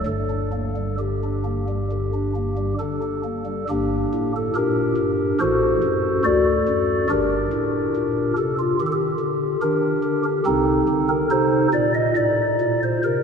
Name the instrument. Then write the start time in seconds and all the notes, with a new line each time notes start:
pipe organ
0.06 G1 G2 A4
0.30 D4
0.53 A#3
0.76 G3
0.99 D3 G4
1.23 D4
1.45 A#3
1.68 G3
1.91 D3
2.14 D4
2.36 A#3
2.58 G3
2.79 D3 D4 A4
3.02 D4
3.24 A#3
3.45 G3
3.69 G1 G2 A#3 D4 G4
4.14 A2
4.36 A4
4.55 A#2 D4 G4 A#4
4.97 G2
5.40 A1 A2 F#4 A4 C5
5.83 F#2
6.24 D2 F#4 A4 D5
6.68 F#2
7.10 G1 G2 D4 G4 A#4
7.53 A2
7.96 A#2
8.38 C3 A4
8.59 F4
8.80 D#3 G4
8.87 A4
8.92 G4
9.19 D3
9.62 D#3 D4 G4 A#4
10.04 D3
10.24 G4
10.45 C2 C3 C4 D#4 A4
10.88 D3
11.09 A#4
11.31 C3 D#4 A4 C5
11.73 A#2 D5
11.95 D#5
12.16 A2 D5
12.61 A#2
12.83 C5
13.04 C3 A#4